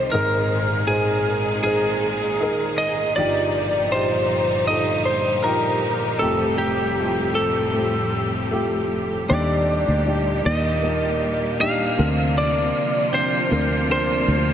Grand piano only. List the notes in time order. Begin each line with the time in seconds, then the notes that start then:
Already playing: C4 D#4 F4 D5 D#5
0.12 G#1 G#2 D#4 G#4 A#4
0.88 D#4 G#4 C5
1.64 D#4 G#4 C5
2.41 D#4 G#4 A#4
3.17 G1 G2 D#4 F4 G4
3.92 D#4 F4 G4
4.68 D#4 F4 A4
5.44 D#4 F4 G4
6.20 F1 F2 A3 F4 G4
6.97 A3 F4 A4
7.74 A3 F4 G4
8.51 A3 F4 G4
9.29 G3 D4 D#4 G4
10.06 D4 D#4 G4
10.44 A#3 D#4 G4
10.82 A#3 D#4 A#4
11.60 D4 D#4 G4
11.98 D3 C4 D4 A#4
13.12 C4 D4 C5
13.50 C4 D4 A#4
13.89 C4 D4 A#4